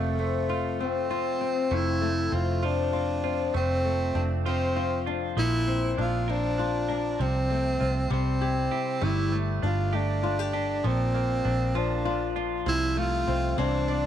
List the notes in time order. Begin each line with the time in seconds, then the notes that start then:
Already playing: F1 F2 A3 C4
0.19 A3 C4
0.49 F4
0.80 A3 C4
1.11 F4
1.41 C4
1.71 F1 F2 A3 E4
2.01 A3
2.32 F1 C4 F4
2.63 F3 D4 F4
2.93 C4 F4
3.24 C4 F4
3.54 F1 F2 A3 C4
3.85 A3
4.15 F1 C4 D4
4.46 F3 C4 F4
4.76 C4 F4
5.06 D4 F4
5.37 A#1 A#2 F3 E4
5.67 C4
5.97 A#1 D4 F4
6.28 F3 D4 A#4
6.58 D4 F4
6.89 D4 A#4
7.19 C2 C3 F3 C4
7.50 A3 C4
7.80 C2 C4 F4
8.10 C2 C3 G3 C4
8.41 E4 G4
8.71 E4 G4
9.01 G1 G3 A3 E4
9.32 A3
9.62 G1 D4 F4
9.93 A3 D4 G4
10.23 D4 F4
10.39 G4
10.53 D4 G4
10.84 A#1 A#2 F3 C4
11.14 A#3
11.45 A#1 D4
11.75 F3 D4 F4
12.05 D4 F4
12.36 D4 F4
12.66 C2 C3 F3 E4
12.97 A3 F4
13.27 C2 C4
13.58 C2 E3 C4 D4
13.88 D4 D5